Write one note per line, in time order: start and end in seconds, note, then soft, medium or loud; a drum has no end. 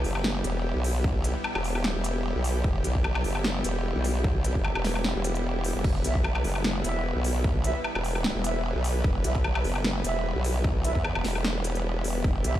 0.00 12.60 G3 medium
0.00 12.60 B3 medium
0.00 12.60 E4 medium
0.00 5.82 G4 medium
0.04 0.43 F#1 loud
0.04 open hi-hat medium
0.15 low woodblock medium
0.24 snare loud
0.44 0.73 E1 loud
0.44 closed hi-hat medium
0.75 1.33 B1 loud
0.84 open hi-hat medium
1.04 kick loud
1.24 closed hi-hat medium
1.44 low woodblock medium
1.55 1.93 E1 loud
1.55 low woodblock medium
1.64 open hi-hat medium
1.75 low woodblock medium
1.84 snare loud
1.95 2.34 E1 medium
2.04 closed hi-hat medium
2.35 2.63 B1 loud
2.44 open hi-hat loud
2.64 2.83 E1 loud
2.64 kick loud
2.84 3.23 B1 medium
2.84 closed hi-hat medium
2.95 kick medium
3.04 low woodblock medium
3.15 low woodblock medium
3.24 3.63 F#1 medium
3.24 open hi-hat medium
3.35 low woodblock medium
3.44 snare loud
3.64 3.93 E1 loud
3.64 closed hi-hat medium
3.95 4.54 B1 loud
4.04 open hi-hat loud
4.24 kick loud
4.44 closed hi-hat medium
4.55 4.74 F#1 loud
4.55 kick medium
4.64 low woodblock medium
4.75 5.14 E1 loud
4.75 low woodblock medium
4.84 snare medium
4.84 open hi-hat medium
4.95 low woodblock medium
5.04 snare loud
5.15 5.74 E1 loud
5.24 closed hi-hat medium
5.35 closed hi-hat soft
5.64 open hi-hat loud
5.75 5.83 F#1 loud
5.84 6.03 E1 loud
5.84 12.22 B4 medium
5.84 kick loud
5.84 crash medium
6.04 6.43 B1 loud
6.04 6.16 E4 medium
6.04 6.16 B4 medium
6.04 6.16 E5 medium
6.04 closed hi-hat medium
6.15 kick medium
6.24 low woodblock medium
6.35 low woodblock medium
6.44 6.83 F#1 loud
6.44 open hi-hat medium
6.55 low woodblock medium
6.64 snare loud
6.84 7.14 E1 loud
6.84 7.02 E4 medium
6.84 7.02 B4 medium
6.84 7.02 E5 loud
6.84 closed hi-hat medium
7.15 7.73 B1 loud
7.24 open hi-hat loud
7.44 kick loud
7.64 7.76 E4 loud
7.64 7.76 B4 medium
7.64 7.76 E5 loud
7.64 closed hi-hat medium
7.84 low woodblock medium
7.95 8.33 E1 loud
7.95 low woodblock medium
8.04 open hi-hat medium
8.15 low woodblock soft
8.24 snare loud
8.35 8.73 E1 loud
8.44 8.56 E4 medium
8.44 8.56 B4 medium
8.44 8.56 E5 loud
8.44 closed hi-hat medium
8.75 9.03 B1 loud
8.84 open hi-hat medium
9.04 9.23 E1 medium
9.04 kick loud
9.24 9.63 B1 loud
9.24 9.36 E4 medium
9.24 9.36 B4 medium
9.24 9.36 E5 medium
9.24 closed hi-hat medium
9.35 kick medium
9.44 low woodblock medium
9.55 low woodblock medium
9.64 10.03 F#1 loud
9.64 open hi-hat medium
9.75 low woodblock medium
9.84 snare loud
10.04 10.33 E1 loud
10.04 10.22 E4 medium
10.04 10.22 B4 medium
10.04 10.22 E5 loud
10.04 closed hi-hat medium
10.35 10.94 B1 loud
10.44 open hi-hat medium
10.64 kick loud
10.84 10.96 E4 loud
10.84 10.96 B4 medium
10.84 10.96 E5 loud
10.84 closed hi-hat medium
10.95 11.14 E2 loud
10.95 kick medium
11.04 low woodblock medium
11.15 11.23 E1 loud
11.15 low woodblock medium
11.24 12.03 E1 loud
11.24 snare medium
11.24 open hi-hat medium
11.35 low woodblock medium
11.44 snare loud
11.64 closed hi-hat medium
11.75 closed hi-hat soft
12.04 12.23 E1 loud
12.04 open hi-hat medium
12.24 12.43 E1 loud
12.24 12.60 G4 medium
12.24 kick loud
12.44 12.60 B1 loud
12.44 12.56 E4 medium
12.44 12.56 B4 medium
12.44 12.56 E5 medium
12.44 closed hi-hat medium
12.55 kick medium